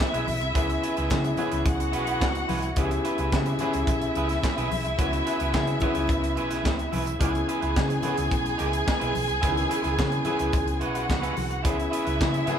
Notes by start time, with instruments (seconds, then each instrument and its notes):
Already playing: grand piano E3 B3 C#4 F#4 G#4, string section E4 E5
0.00 muted clean electric guitar stroke, kick, snare, clap
0.13 fingered electric bass B1, clean electric guitar E4 G#4 B4, closed hi-hat
0.27 fingered electric bass B1, muted clean electric guitar stroke, open hi-hat, high conga
0.41 fingered electric bass C2, muted clean electric guitar stroke, closed hi-hat
0.54 fingered electric bass C#2, grand piano E3 B3 C#4 G#4, clean electric guitar E4 G#4 B4, kick, closed hi-hat
0.69 muted clean electric guitar stroke, closed hi-hat
0.82 clean electric guitar E4 G#4 B4, closed hi-hat
0.97 fingered electric bass C#2, clean electric guitar E4 G#4 B4, closed hi-hat
1.10 fingered electric bass C#3, grand piano E3 B3 C#4 G#4, muted clean electric guitar stroke, kick, snare, clap, high conga
1.24 muted clean electric guitar stroke, closed hi-hat
1.37 grand piano E3 B3 C#4 G#4, clean electric guitar E4 G#4 B4, closed hi-hat, muted conga, low conga
1.51 fingered electric bass C#2, clean electric guitar E4 G#4 B4, closed hi-hat
1.66 fingered electric bass C#2, string section F#4 F#5, muted clean electric guitar stroke, kick, closed hi-hat, muted conga
1.80 muted clean electric guitar stroke, closed hi-hat
1.92 fingered electric bass B1, clean electric guitar E4 G#4 B4, closed hi-hat
2.07 clean electric guitar E4 G#4 B4, closed hi-hat
2.20 fingered electric bass C#2, kick, snare, clap, high conga
2.35 muted clean electric guitar stroke, closed hi-hat
2.48 fingered electric bass C2, clean electric guitar E4 G#4 B4, open hi-hat, high conga
2.62 muted clean electric guitar stroke, closed hi-hat
2.76 fingered electric bass C#2, grand piano E3 B3 C#4 G4, clean electric guitar E4 G#4 B4, string section E4 E5, kick, closed hi-hat
2.85 grand piano G#4
2.91 muted clean electric guitar stroke, closed hi-hat
3.04 clean electric guitar E4 G#4 B4, closed hi-hat
3.18 fingered electric bass C#2, clean electric guitar E4 G#4 B4, closed hi-hat
3.32 fingered electric bass C#3, grand piano E3 B3 C#4 G#4, kick, snare, clap, high conga
3.46 muted clean electric guitar stroke, closed hi-hat
3.59 grand piano E3 B3 C#4 G#4, clean electric guitar E4 G#4 B4, closed hi-hat, muted conga, low conga
3.73 fingered electric bass C#2, muted clean electric guitar stroke, closed hi-hat
3.87 fingered electric bass B1, muted clean electric guitar stroke, kick, closed hi-hat, muted conga
4.02 muted clean electric guitar stroke, closed hi-hat
4.15 fingered electric bass C#2, clean electric guitar E4 G#4 B4, closed hi-hat
4.29 muted clean electric guitar stroke, snare, closed hi-hat
4.43 muted clean electric guitar stroke, kick, snare, clap, high conga
4.57 fingered electric bass B1, clean electric guitar E4 G#4 B4, closed hi-hat
4.71 fingered electric bass B1, muted clean electric guitar stroke, open hi-hat, high conga
4.85 fingered electric bass C2, muted clean electric guitar stroke, closed hi-hat
4.98 fingered electric bass C#2, grand piano E3 B3 C#4 F#4, clean electric guitar E4 G#4 B4, kick, closed hi-hat
5.12 muted clean electric guitar stroke, closed hi-hat
5.25 clean electric guitar E4 G#4 B4, closed hi-hat
5.39 fingered electric bass C#2, clean electric guitar E4 G#4 B4, closed hi-hat
5.53 fingered electric bass C#3, grand piano E3 B3 C#4 G#4, muted clean electric guitar stroke, kick, snare, clap, high conga
5.67 muted clean electric guitar stroke, closed hi-hat
5.80 grand piano E3 B3 C#4 B4, clean electric guitar E4 G#4 B4, kick, closed hi-hat, muted conga, low conga
5.95 fingered electric bass C#2, clean electric guitar E4 G#4 B4, closed hi-hat
6.07 fingered electric bass C#2, muted clean electric guitar stroke, kick, closed hi-hat, muted conga
6.22 muted clean electric guitar stroke, closed hi-hat
6.36 fingered electric bass B1, clean electric guitar E4 G#4 B4, closed hi-hat
6.50 clean electric guitar E4 G#4 B4, snare, closed hi-hat
6.64 fingered electric bass C#2, kick, snare, clap, high conga
6.78 muted clean electric guitar stroke, closed hi-hat
6.92 fingered electric bass C2, clean electric guitar E4 G#4 B4, open hi-hat, high conga
7.07 muted clean electric guitar stroke, closed hi-hat
7.20 fingered electric bass C#2, grand piano E3 B3 C#4 G#4, clean electric guitar E4 G#4 B4, string section G#4 G#5, kick, closed hi-hat, muted conga
7.34 muted clean electric guitar stroke, closed hi-hat
7.48 clean electric guitar E4 G#4 B4, closed hi-hat
7.61 fingered electric bass C#2, clean electric guitar E4 G#4 B4, closed hi-hat
7.76 fingered electric bass C#3, grand piano E3 B3 C#4 G#4, kick, snare, clap, high conga
7.89 muted clean electric guitar stroke, closed hi-hat
8.02 grand piano E3 B3 C#4 G#4, clean electric guitar E4 G#4 B4, closed hi-hat, muted conga, low conga
8.17 fingered electric bass C#2, muted clean electric guitar stroke, closed hi-hat
8.31 fingered electric bass B1, muted clean electric guitar stroke, kick, closed hi-hat, muted conga
8.45 muted clean electric guitar stroke, closed hi-hat
8.58 fingered electric bass C#2, clean electric guitar E4 G#4 B4, closed hi-hat
8.72 muted clean electric guitar stroke, closed hi-hat
8.86 muted clean electric guitar stroke, kick, snare, clap, high conga
9.00 fingered electric bass B1, clean electric guitar E4 G#4 B4, closed hi-hat
9.15 fingered electric bass B1, open hi-hat, high conga
9.28 fingered electric bass C2, muted clean electric guitar stroke, closed hi-hat
9.41 fingered electric bass C#2, grand piano D#3 B3 C#4 G#4, clean electric guitar E4 G#4 B4, kick, closed hi-hat
9.50 grand piano E3
9.55 muted clean electric guitar stroke, closed hi-hat
9.69 clean electric guitar E4 G#4 B4, closed hi-hat
9.83 fingered electric bass C#2, clean electric guitar E4 G#4 B4, closed hi-hat
9.97 fingered electric bass C#3, grand piano E3 B3 C#4 G#4, muted clean electric guitar stroke, kick, snare, clap, high conga
10.11 muted clean electric guitar stroke, closed hi-hat
10.25 grand piano E3 B3 C#4 G#4, clean electric guitar E4 G#4 B4, closed hi-hat, muted conga, low conga
10.39 fingered electric bass C#2, clean electric guitar E4 G#4 B4, closed hi-hat
10.52 fingered electric bass C#2, muted clean electric guitar stroke, kick, closed hi-hat, muted conga
10.66 muted clean electric guitar stroke, closed hi-hat
10.80 fingered electric bass B1, clean electric guitar E4 G#4 B4, string section F#4 F#5, closed hi-hat
10.94 clean electric guitar E4 G#4 B4, closed hi-hat
11.08 fingered electric bass C#2, muted clean electric guitar stroke, kick, snare, clap, high conga
11.22 clean electric guitar E4 G#4 B4, closed hi-hat
11.36 fingered electric bass C2, muted clean electric guitar stroke, open hi-hat, high conga
11.50 muted clean electric guitar stroke, closed hi-hat
11.63 fingered electric bass C#2, grand piano E3 B3 C#4 G#4, clean electric guitar E4 G#4 B4, string section E4 E5, kick, closed hi-hat, muted conga
11.78 muted clean electric guitar stroke, closed hi-hat
11.91 clean electric guitar E4 G#4 B4, closed hi-hat
12.05 fingered electric bass C#2, clean electric guitar E4 G#4 B4, closed hi-hat
12.20 fingered electric bass C#3, grand piano E3 B3 C#4 G#4, kick, snare, clap, high conga
12.33 muted clean electric guitar stroke, closed hi-hat
12.46 grand piano E3 B3 C#4 G#4, clean electric guitar E4 G#4 B4, closed hi-hat, muted conga, low conga